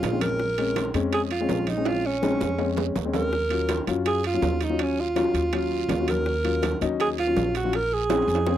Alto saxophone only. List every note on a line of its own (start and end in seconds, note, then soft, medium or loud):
0.00 0.23 F4 medium
0.22 0.95 A#4 medium
1.14 1.22 G#4 medium
1.32 1.70 F4 medium
1.68 1.88 D#4 medium
1.87 2.08 F4 medium
2.06 2.88 C#4 medium
3.15 3.84 A#4 medium
4.07 4.24 G#4 loud
4.27 4.65 F4 loud
4.64 4.84 D#4 medium
4.82 5.02 C#4 medium
5.00 6.12 F4 medium
6.10 6.83 A#4 medium
7.01 7.09 G#4 loud
7.19 7.53 F4 loud
7.57 7.77 F#4 medium
7.75 7.95 A#4 loud
7.94 8.58 G#4 loud